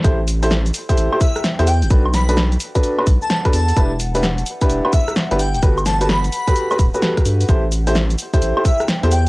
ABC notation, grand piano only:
X:1
M:4/4
L:1/16
Q:"Swing 16ths" 1/4=129
K:Ador
V:1 name="Grand piano"
[EGAc] z2 [EGAc] z3 [EGAc]2 [EGAc] z3 [EGAc] z2 | [DFAB] z2 [DFAB] z3 [DFAB]2 [DFAB] z3 [DFAB] z2 | [DEGB] z2 [DEGB] z3 [DEGB]2 [DEGB] z3 [DEGB] z2 | [FGAB] z2 [FGAB] z3 [FGAB]2 [FGAB] z [FGAB]4- [FGAB] |
[EGAc] z2 [EGAc] z3 [EGAc]2 [EGAc] z3 [EGAc] z2 |]